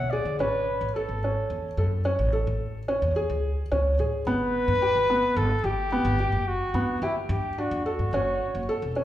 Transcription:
Already playing: upright bass B2, flugelhorn F#5
0.11 felt piano G#4, flugelhorn D5
0.25 upright bass D3
0.39 upright bass A1, felt piano C#4, flugelhorn B4
0.81 upright bass A1
0.94 flugelhorn A4, felt piano A4
1.09 upright bass G#1
1.24 felt piano C#4
1.50 upright bass E2
1.77 upright bass F#2, felt piano A4
2.05 felt piano C#4
2.19 upright bass A1
2.33 felt piano A4
2.47 upright bass A2
2.88 felt piano C#4
3.02 upright bass E2
3.16 felt piano G#4
3.30 upright bass C#2
3.72 upright bass C#2, felt piano C#4
3.99 upright bass A2, felt piano G#4
4.26 upright bass G1, felt piano B3, flugelhorn B4
4.68 upright bass G2
4.82 felt piano G4
4.95 upright bass G1
5.10 felt piano B3
5.37 upright bass G1, flugelhorn A4
5.64 upright bass G1, flugelhorn G4, felt piano G4
5.92 felt piano B3
6.05 upright bass G1
6.20 felt piano G4
6.32 upright bass F#1
6.48 flugelhorn F#4
6.74 upright bass G2, felt piano B3
7.02 upright bass G1, flugelhorn E4, felt piano G4
7.29 upright bass G2, flugelhorn G4
7.58 felt piano D4, flugelhorn F#4
7.71 upright bass E2
7.86 flugelhorn F#4, felt piano A4
7.99 upright bass G2
8.13 upright bass F#1, felt piano C#4
8.55 upright bass F#1
8.69 felt piano A4
8.82 upright bass E1
8.96 felt piano C#4

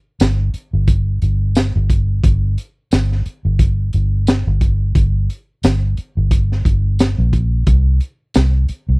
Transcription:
0.20 fingered electric bass G1, snare, closed hi-hat, tambourine
0.54 muted fingered electric bass stroke, closed hi-hat
0.73 fingered electric bass G1
0.88 kick, closed hi-hat
1.22 fingered electric bass G1, closed hi-hat
1.55 snare, closed hi-hat, tambourine
1.76 fingered electric bass G1
1.90 kick, closed hi-hat
2.24 fingered electric bass G1, kick, closed hi-hat
2.58 closed hi-hat
2.91 fingered electric bass G1, snare, closed hi-hat, tambourine
3.12 snare
3.26 muted fingered electric bass stroke, closed hi-hat
3.45 fingered electric bass G1
3.59 kick, closed hi-hat
3.93 fingered electric bass G1, closed hi-hat
4.27 snare, closed hi-hat, tambourine
4.47 fingered electric bass G1
4.61 kick, closed hi-hat
4.95 fingered electric bass G1, kick, closed hi-hat
5.30 closed hi-hat
5.63 fingered electric bass G1, snare, closed hi-hat, tambourine
5.97 muted fingered electric bass stroke, closed hi-hat
6.17 fingered electric bass G1
6.31 kick, closed hi-hat
6.52 snare
6.65 fingered electric bass G1, kick, closed hi-hat
6.99 snare, closed hi-hat, tambourine
7.18 fingered electric bass A#1
7.33 kick, closed hi-hat
7.67 fingered electric bass C2, kick, closed hi-hat
8.00 closed hi-hat
8.34 fingered electric bass C2, snare, closed hi-hat, tambourine
8.69 muted fingered electric bass stroke, closed hi-hat
8.89 fingered electric bass C2

